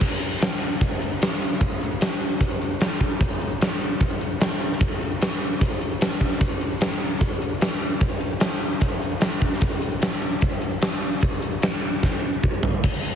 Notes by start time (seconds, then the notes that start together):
0.01 kick, crash
0.22 closed hi-hat
0.42 snare, closed hi-hat
0.62 closed hi-hat
0.81 kick, closed hi-hat
1.02 closed hi-hat
1.22 snare, closed hi-hat
1.34 snare
1.42 closed hi-hat
1.53 snare
1.61 kick, closed hi-hat
1.81 closed hi-hat
2.01 snare, closed hi-hat
2.21 closed hi-hat
2.40 kick, closed hi-hat
2.62 closed hi-hat
2.81 snare, closed hi-hat
3.01 kick, closed hi-hat
3.21 kick, closed hi-hat
3.41 closed hi-hat
3.61 snare, closed hi-hat
3.81 closed hi-hat
4.01 kick, closed hi-hat
4.21 closed hi-hat
4.41 snare, closed hi-hat
4.61 closed hi-hat
4.72 snare
4.81 kick, closed hi-hat
5.01 closed hi-hat
5.22 snare, closed hi-hat
5.41 closed hi-hat
5.61 kick, closed hi-hat
5.81 closed hi-hat
6.01 snare, closed hi-hat
6.20 kick, closed hi-hat
6.32 snare
6.41 kick, closed hi-hat
6.61 closed hi-hat
6.81 snare, closed hi-hat
7.01 closed hi-hat
7.21 kick, closed hi-hat
7.42 closed hi-hat
7.61 snare, closed hi-hat
7.81 closed hi-hat
8.00 kick, closed hi-hat
8.21 closed hi-hat
8.40 snare, closed hi-hat
8.61 closed hi-hat
8.81 kick, closed hi-hat
9.02 closed hi-hat
9.21 snare, closed hi-hat
9.41 kick, closed hi-hat
9.53 snare
9.61 kick, closed hi-hat
9.81 closed hi-hat
10.02 snare, closed hi-hat
10.22 closed hi-hat
10.41 kick, closed hi-hat
10.62 closed hi-hat
10.82 snare, closed hi-hat
10.92 snare
11.02 closed hi-hat
11.21 kick, closed hi-hat
11.42 closed hi-hat
11.62 snare, closed hi-hat
11.83 closed hi-hat
12.03 kick, snare
12.44 kick
12.63 floor tom
12.83 kick, crash